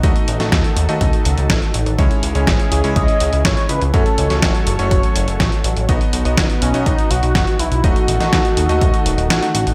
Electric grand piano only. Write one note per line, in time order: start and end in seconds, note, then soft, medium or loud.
0.03 0.37 A3 medium
0.03 0.37 D#4 medium
0.03 0.37 F#4 medium
0.03 0.37 D#5 loud
0.40 0.86 A3 medium
0.40 0.86 D#4 medium
0.40 0.86 F#4 medium
0.40 0.86 D#5 medium
0.89 1.96 A3 medium
0.89 1.96 D#4 medium
0.89 1.96 F#4 medium
0.89 1.96 D#5 loud
1.99 2.32 G#3 medium
1.99 2.32 C#4 medium
1.99 2.32 E4 medium
1.99 2.32 C#5 loud
2.35 2.81 G#3 medium
2.35 2.81 C#4 medium
2.35 2.81 E4 medium
2.35 2.81 C#5 medium
2.84 3.91 G#3 medium
2.84 3.91 C#4 medium
2.84 3.91 E4 medium
2.84 3.91 C#5 loud
3.94 4.27 A3 medium
3.94 4.27 C#4 medium
3.94 4.27 F#4 medium
3.94 4.27 C#5 loud
4.30 4.76 A3 medium
4.30 4.76 C#4 medium
4.30 4.76 F#4 medium
4.30 4.76 C#5 medium
4.79 5.86 A3 medium
4.79 5.86 C#4 medium
4.79 5.86 F#4 medium
4.79 5.86 C#5 loud
5.89 6.22 B3 medium
5.89 6.22 D#4 medium
5.89 6.22 F#4 medium
5.89 6.22 D#5 loud
6.25 6.71 B3 medium
6.25 6.71 D#4 medium
6.25 6.71 F#4 medium
6.25 6.71 D#5 medium
6.74 7.81 B3 loud
6.74 7.81 D#4 medium
6.74 7.81 F#4 medium
6.74 7.81 D#5 loud
7.84 8.18 A3 medium
7.84 8.18 D#4 medium
7.84 8.18 F#4 medium
7.84 8.18 D#5 loud
8.20 8.66 A3 medium
8.20 8.66 D#4 medium
8.20 8.66 F#4 medium
8.20 8.66 D#5 medium
8.69 9.40 A3 medium
8.69 9.40 D#4 medium
8.69 9.40 F#4 medium
8.69 9.40 D#5 loud
9.42 9.74 A3 medium
9.42 9.74 D#4 medium
9.42 9.74 F#4 medium
9.42 9.74 F#5 medium